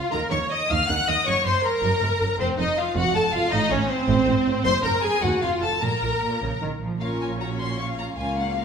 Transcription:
Already playing: violin section F4 F5, viola section F4
0.11 double bass section D#2, cello section D#3, violin section A#4 A#5, viola section A#4
0.31 double bass section D#2, cello section D#3, violin section C#5 C#6, viola section C#5
0.50 violin section D#5 D#6, viola section D#5
0.70 double bass section D#2, cello section D#3, violin section F5 F6, viola section F5
0.88 double bass section D#2, cello section D#3, violin section F#5 F#6, viola section F#5
1.07 double bass section D#2, cello section D#3, violin section D#5 D#6, viola section D#5
1.26 double bass section F#1, cello section F#2, violin section C#5 C#6, viola section C#5
1.45 double bass section F#1, cello section F#2, viola section C5, violin section C5 C6
1.63 violin section A#4 A#5, viola section A#4
1.82 double bass section F#1, cello section F#2
2.01 double bass section F#1, cello section F#2
2.20 double bass section F#1, cello section F#2
2.39 double bass section F1, cello section F2, violin section C4 C5, viola section C4
2.58 double bass section F1, cello section F2, violin section D#4 D#5, viola section D#4
2.77 violin section F4 F5, viola section F4
2.95 double bass section F1, cello section F2, viola section F#4, violin section F#4 F#5
3.14 double bass section F1, cello section F2, violin section A4 A5, viola section A4
3.33 double bass section F1, cello section F2, violin section F4 F5, viola section F4
3.51 double bass section A1, cello section A2, violin section D#4 D#5, viola section D#4
3.71 double bass section A1, cello section A2, violin section C#4 C#5, viola section C#4
3.89 violin section C4 C5, viola section C4
4.08 double bass section A1, cello section A2
4.26 double bass section A1, cello section A2
4.45 double bass section A1, cello section A2
4.64 double bass section F#1, cello section F#2, violin section C5 C6, viola section C5
4.83 double bass section F#1, cello section F#2, viola section A#4, violin section A#4 A#5
5.02 violin section G#4 G#5, viola section G#4
5.22 double bass section D#2, cello section D#2, violin section F#4 F#5, viola section F#4
5.41 double bass section F1, cello section F2, violin section F4 F5, viola section F4
5.61 double bass section F1, cello section F2, violin section A4 A5, viola section A4
5.81 double bass section A#1, cello section A#2, violin section A#4 A#5, viola section A#4
6.02 double bass section A#1, cello section A#2
6.21 cello section A#2
6.42 double bass section A#1, cello section C#3
6.61 double bass section A#1, cello section D#3
6.81 double bass section A#1, cello section F3
7.00 double bass section A#1, cello section A#2, viola section C#4 F4, violin section A#4 C#5 F5
7.21 violin section G#5
7.40 viola section C#4, violin section F#4 C#5 A#5
7.59 violin section C6
7.78 violin section F4 F5 C#6
7.98 violin section A#5
8.16 double bass section C#2, cello section C#2, viola section A#3 C#4, violin section F4 F5 G#5
8.37 violin section F#5
8.55 viola section A#3 F4, violin section A#4 F5

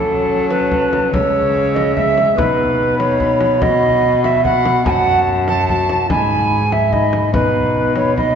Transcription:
Already playing: cello F#3, trombone C#4, recorder A4, flute A5
0.50 recorder B4, frame drum
0.72 frame drum
0.93 frame drum
1.12 cello C#3, trombone G#3, recorder C#5, flute E6, frame drum
1.75 recorder D#5, frame drum
1.95 trombone G#3, recorder E5, flute E6, frame drum
2.18 frame drum
2.37 cello B2, trombone D#4, recorder B4, flute B5, frame drum
2.99 recorder C#5, frame drum
3.20 frame drum
3.41 frame drum
3.61 trombone F#4, recorder D#5, flute B5, frame drum
4.24 recorder E5, frame drum
4.44 trombone F#4, recorder F#5, flute B5, frame drum
4.66 frame drum
4.86 cello F#2, trombone F#4, recorder G#5, flute A5, frame drum
4.90 recorder F#5
5.48 recorder A5, frame drum
5.68 trombone F#4, recorder A5, flute A5, frame drum
5.89 frame drum
6.09 cello G#2, trombone D#4, recorder G#5, flute B5, frame drum
6.72 recorder E5, frame drum
6.92 trombone D#4, recorder D#5, flute B5, frame drum
7.13 frame drum
7.33 cello B2, trombone D#4, recorder B4, flute B5, frame drum
7.96 recorder C#5, frame drum
8.17 trombone D#4, recorder D#5, flute B5, frame drum

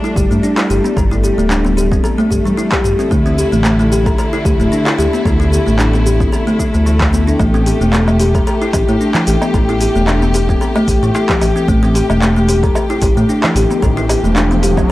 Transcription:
Already playing: string section G3 A3 D4
0.04 kalimba E4, cabasa
0.16 analog synth bass G1, kalimba G4, kick, cabasa
0.31 analog synth bass G2, kalimba A3, cabasa
0.43 kalimba D4, cabasa
0.58 kalimba E4, clap, cabasa
0.70 analog synth bass G1, kalimba G4, cabasa
0.84 kalimba B3, cabasa
0.97 analog synth bass G1, kalimba A4, kick, cabasa
1.11 kalimba E4, cabasa
1.24 kalimba G4, cabasa
1.38 analog synth bass D1, kalimba A3, cabasa
1.50 kalimba D4, clap, cabasa
1.65 kalimba B3, cabasa
1.77 kalimba G4, cabasa
1.92 kalimba C4, kick, cabasa
2.04 kalimba A4, cabasa
2.18 kalimba A3, cabasa
2.31 analog synth bass G1, kalimba G4, kick, cabasa
2.45 analog synth bass G2, kalimba E3, cabasa
2.57 kalimba E4, cabasa
2.72 kalimba G4, kick, clap, cabasa
2.84 analog synth bass G1, kalimba G4, cabasa
2.99 kalimba C4, cabasa
3.11 analog synth bass D2, string section D3 E4, kalimba A3, kick, cabasa
3.26 kalimba C4, cabasa
3.38 kalimba G4, cabasa
3.52 analog synth bass A1, kalimba A3, cabasa
3.64 kalimba A3, clap, cabasa
3.79 kalimba A3, cabasa
3.92 kalimba G4, cabasa
4.06 kalimba A4, kick, cabasa
4.18 kalimba A4, cabasa
4.33 kalimba E4, cabasa
4.45 analog synth bass D2, kalimba G4, kick, cabasa
4.60 analog synth bass D1, kalimba A3, cabasa
4.72 kalimba D4, cabasa
4.86 kalimba E4, clap, cabasa
4.99 analog synth bass D2, kalimba G4, cabasa
5.13 kalimba B3, cabasa
5.25 analog synth bass D2, kalimba A4, kick, cabasa
5.40 kalimba E4, cabasa
5.52 kalimba G4, cabasa
5.67 analog synth bass A1, kalimba A3, cabasa
5.79 kalimba D4, clap, cabasa
5.94 kalimba B3, cabasa
6.06 kalimba G4, cabasa
6.20 kalimba C4, kick, cabasa
6.32 kalimba A4, cabasa
6.47 kalimba A3, cabasa
6.59 kalimba E4, kick, cabasa
6.74 analog synth bass D2, kalimba A3, cabasa
6.86 kalimba E3, cabasa
7.01 kalimba E4, kick, clap, cabasa
7.13 kalimba B3, cabasa
7.27 kalimba D4, cabasa
7.39 analog synth bass A1, kalimba A3, string section G4, kick, cabasa, low woodblock
7.54 kalimba C4, darbuka ka, cabasa
7.66 kalimba G4, open hi-hat, darbuka ka, cabasa
7.81 analog synth bass E1, kalimba A3, cabasa
7.93 kalimba A3, clap, cabasa
8.08 kalimba A3, cabasa, low woodblock
8.19 kalimba G4, open hi-hat, darbuka tek, cabasa
8.35 kalimba A4, kick, cabasa
8.47 kalimba A4, cabasa
8.62 kalimba E4, cabasa
8.73 analog synth bass A1, kalimba G4, kick, open hi-hat, darbuka tek, cabasa, low woodblock
8.89 analog synth bass A2, kalimba A3, cabasa
9.01 kalimba D4, cabasa
9.15 kalimba E4, clap, darbuka tek, darbuka dum, cabasa
9.27 analog synth bass A1, kalimba G4, open hi-hat, cabasa
9.42 kalimba B3, darbuka ka, cabasa, low woodblock
9.54 analog synth bass A1, kalimba A4, kick, cabasa
9.68 kalimba E4, darbuka ka, cabasa
9.80 kalimba G4, open hi-hat, darbuka ka, cabasa
9.95 analog synth bass E1, kalimba A3, cabasa
10.07 kalimba D4, clap, cabasa, low woodblock
10.22 kalimba B3, cabasa
10.34 kalimba G4, open hi-hat, darbuka tek, cabasa
10.49 kalimba C4, kick, cabasa
10.61 kalimba A4, cabasa
10.76 kalimba A3, cabasa, low woodblock
10.88 analog synth bass A1, kalimba G4, kick, open hi-hat, cabasa
11.03 analog synth bass A2, kalimba E3, cabasa
11.15 kalimba E4, darbuka tek, cabasa
11.29 kalimba G4, kick, clap, darbuka dum, cabasa
11.41 analog synth bass A1, kalimba G4, open hi-hat, darbuka tek, darbuka dum, cabasa, low woodblock
11.56 kalimba C4, cabasa
11.68 analog synth bass A1, kalimba A3, kick, riser, cabasa
11.83 kalimba C4, darbuka ka, cabasa
11.94 kalimba G4, open hi-hat, darbuka ka, cabasa
12.10 analog synth bass E1, kalimba A3, cabasa, low woodblock
12.22 kalimba A3, clap, cabasa
12.36 kalimba A3, cabasa
12.48 kalimba G4, open hi-hat, darbuka tek, cabasa
12.63 kalimba A4, kick, cabasa
12.75 kalimba A4, cabasa, low woodblock
12.90 kalimba E4, cabasa
13.02 analog synth bass A1, kalimba G4, kick, open hi-hat, darbuka tek, cabasa
13.17 analog synth bass A2, kalimba A3, cabasa
13.29 kalimba D4, cabasa
13.43 kalimba E4, clap, darbuka tek, darbuka dum, cabasa, low woodblock
13.55 analog synth bass A1, kalimba G4, open hi-hat, cabasa
13.70 kalimba B3, darbuka ka, cabasa
13.82 analog synth bass A1, kalimba A4, kick, cabasa
13.97 kalimba E4, darbuka ka, cabasa
14.09 kalimba G4, open hi-hat, darbuka ka, darbuka tek, cabasa, low woodblock
14.24 analog synth bass E1, kalimba A3, cabasa
14.36 kalimba D4, clap, cabasa
14.51 kalimba B3, cabasa
14.62 kalimba G4, open hi-hat, darbuka tek, cabasa
14.77 kalimba C4, kick, darbuka ka, cabasa, low woodblock

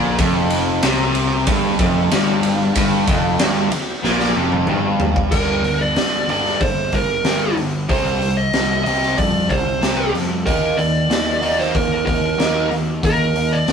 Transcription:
Already playing: picked electric bass A#1, distorted electric guitar A#2
0.18 picked electric bass F1, distorted electric guitar F2, kick, ride
0.50 ride
0.82 picked electric bass C2, distorted electric guitar C3, snare, ride
1.15 ride
1.46 picked electric bass G1, distorted electric guitar G2, kick, ride
1.79 picked electric bass F1, distorted electric guitar F2, kick, ride
2.11 picked electric bass G1, distorted electric guitar G2, snare, ride
2.43 ride
2.75 picked electric bass G1, distorted electric guitar G2, kick, ride
3.07 picked electric bass F1, distorted electric guitar F2, kick, ride
3.39 picked electric bass G1, distorted electric guitar G2, snare, ride
3.71 muted picked electric bass stroke, muted overdriven electric guitar stroke, muted distorted electric guitar stroke, ride
4.04 picked electric bass A#1, distorted electric guitar A#2, snare
4.20 snare
4.36 picked electric bass F1, distorted electric guitar F2
4.52 mid tom
4.67 picked electric bass G1, distorted electric guitar G2, mid tom
5.00 floor tom
5.16 kick
5.32 picked electric bass G1, distorted electric guitar G2 D3 G3, lead electric guitar A#4, kick, crash
5.62 picked electric bass G1, open hi-hat
5.66 distorted electric guitar G2 D3
5.82 lead electric guitar D5
5.95 picked electric bass G1, distorted electric guitar G2 D3, snare, open hi-hat
6.28 distorted electric guitar G2 D3 G3, lead electric guitar D5, open hi-hat
6.45 snare
6.61 picked electric bass G1, distorted electric guitar G2 D3, lead electric guitar C5, kick, open hi-hat
6.92 distorted electric guitar G2 D3, lead electric guitar A#4, kick, open hi-hat
7.23 picked electric bass G1, distorted electric guitar G2 D3 G3, snare, open hi-hat
7.56 picked electric bass G1, distorted electric guitar G2 D3, open hi-hat
7.89 picked electric bass C2, distorted electric guitar C3 G3 C4, lead electric guitar C5, kick, open hi-hat
8.22 distorted electric guitar C3 G3, open hi-hat
8.37 lead electric guitar D#5
8.53 picked electric bass C2, distorted electric guitar C3 G3, snare, open hi-hat
8.84 picked electric bass C2, distorted electric guitar C3 G3 C4, lead electric guitar D#5, open hi-hat
9.03 snare
9.18 picked electric bass F2, distorted electric guitar C3 G3, lead electric guitar D5, kick, open hi-hat
9.49 picked electric bass C2, distorted electric guitar C3 G3, lead electric guitar C5, kick, open hi-hat
9.81 picked electric bass C2, distorted electric guitar C3 G3 C4, snare, open hi-hat
10.13 picked electric bass F2, distorted electric guitar C3 G3, snare, open hi-hat
10.45 picked electric bass D#2, distorted electric guitar D#3 A#3 D#4, lead electric guitar A#4, kick, open hi-hat
10.77 picked electric bass D#2, distorted electric guitar D#3 A#3, lead electric guitar D5, open hi-hat
11.10 picked electric bass D#2, distorted electric guitar D#3 A#3, snare, open hi-hat
11.42 distorted electric guitar D#3 A#3 D#4, open hi-hat
11.59 lead electric guitar C5, snare
11.75 picked electric bass D#2, distorted electric guitar D#3 A#3, lead electric guitar A#4, kick, open hi-hat
12.06 distorted electric guitar D#3 A#3, lead electric guitar A#4, kick, open hi-hat
12.38 picked electric bass D#2, distorted electric guitar D#3 A#3 D#4, snare, open hi-hat
12.71 picked electric bass D#2, distorted electric guitar D#3 A#3, open hi-hat
13.03 picked electric bass D#2, distorted electric guitar D#3 A#3, lead electric guitar A#4, kick, open hi-hat
13.35 distorted electric guitar D#3 A#3, open hi-hat
13.53 lead electric guitar D5
13.67 picked electric bass D#2, distorted electric guitar D#3 A#3, snare, open hi-hat

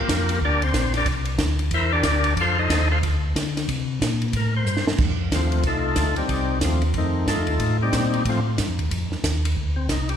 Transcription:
0.00 tonewheel organ A#3 F4 G4 A#4
0.08 tonewheel organ F2, kick, snare, hi-hat pedal, ride
0.29 ride
0.41 tonewheel organ D2, kick
0.45 tonewheel organ D4 G4 A#4 D5
0.62 tonewheel organ C4 C5, ride
0.73 tonewheel organ A#1, kick, snare, hi-hat pedal, ride
0.94 tonewheel organ D4 G4 A#4 D5, snare, ride
1.06 tonewheel organ C2, kick, ride
1.25 ride
1.38 tonewheel organ D2, kick, snare, hi-hat pedal, ride
1.59 ride
1.71 tonewheel organ E2 E4 A#4 C5 E5, kick, ride
1.92 tonewheel organ D4 G4 A#4 D5
2.03 tonewheel organ D2, kick, snare, hi-hat pedal, ride
2.24 ride
2.37 tonewheel organ F2 A4 F5, kick, ride
2.41 tonewheel organ F4 C5
2.58 tonewheel organ D#4 A4 C5 D#5
2.70 tonewheel organ D#2, kick, snare, hi-hat pedal, ride
2.91 tonewheel organ F4 A4 C5 F5
3.03 tonewheel organ D2, kick, ride
3.36 tonewheel organ D3, kick, snare, hi-hat pedal, ride
3.57 snare, ride
3.68 tonewheel organ C3, kick, ride
4.01 tonewheel organ A#2, kick, snare, hi-hat pedal, ride
4.22 ride
4.33 tonewheel organ A2 A#4, kick, ride
4.57 tonewheel organ C5
4.65 tonewheel organ G2, hi-hat pedal
4.77 snare
4.86 tonewheel organ G2, snare
4.98 tonewheel organ F2, kick, crash
5.31 tonewheel organ D#2 F4, kick, snare, hi-hat pedal, ride
5.35 tonewheel organ F3 A3 C4
5.52 ride
5.63 tonewheel organ C2 D#4 F4 A4, kick, ride
5.68 tonewheel organ A3
5.96 tonewheel organ D2, kick, snare, hi-hat pedal, ride
6.16 tonewheel organ D2 G3 C4 D#4 G4, ride
6.29 tonewheel organ C2, kick, ride
6.61 tonewheel organ D#2 F4, kick, snare, hi-hat pedal, ride
6.65 tonewheel organ F3 A3 C4
6.82 ride
6.94 tonewheel organ F2 D#3, kick, ride
6.98 tonewheel organ A3 C4 D#4
7.27 tonewheel organ G2 A3 D#4 F4 A4, kick, snare, hi-hat pedal, ride
7.36 tonewheel organ F2
7.47 tonewheel organ D#2, ride
7.60 tonewheel organ A2, kick, ride
7.82 tonewheel organ G3 C4 D#4 G4
7.92 tonewheel organ A#2, kick, snare, hi-hat pedal, ride
8.14 ride
8.25 tonewheel organ A2 A3, kick, ride
8.29 tonewheel organ F3 C4 F4
8.58 tonewheel organ G2, kick, snare, hi-hat pedal, ride
8.67 tonewheel organ F2
8.79 tonewheel organ D#2, ride
8.91 tonewheel organ F2, kick, ride
9.10 tonewheel organ F2, snare
9.24 tonewheel organ D#2, kick, snare, hi-hat pedal, ride
9.45 ride
9.57 tonewheel organ D2, kick
9.76 tonewheel organ C4
9.89 tonewheel organ C2 D#4, kick, snare, hi-hat pedal, ride
10.09 tonewheel organ G4, ride

